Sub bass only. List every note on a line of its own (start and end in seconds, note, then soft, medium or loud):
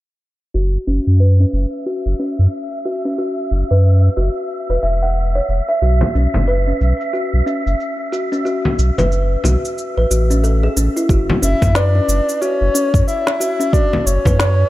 0.54 0.77 F#1 medium
0.87 1.00 F#1 medium
1.07 1.45 F#2 medium
1.53 1.66 F#1 loud
2.06 2.14 F#1 medium
2.39 2.47 F#2 medium
3.51 3.63 F#1 medium
3.71 4.09 F#2 medium
4.17 4.29 F#1 medium
4.70 4.78 E1 medium
4.83 5.41 E1 medium
5.49 5.61 E1 medium
5.82 6.05 B1 medium
6.15 6.27 B1 medium
6.35 6.73 F#1 medium
6.81 6.93 B1 medium
7.33 7.42 B1 medium
7.66 7.75 F#1 medium
8.79 8.91 B1 medium
8.98 9.37 F#1 medium
9.44 9.57 B1 loud
9.97 10.06 A1 medium
10.11 10.69 A1 medium
10.77 10.89 A1 loud
11.09 11.32 F#1 medium
11.42 11.55 F#1 medium
11.62 12.00 F#2 medium
12.08 12.21 F#1 loud
12.61 12.69 F#1 medium
12.94 13.02 F#2 medium
14.06 14.19 F#1 medium
14.26 14.64 F#2 medium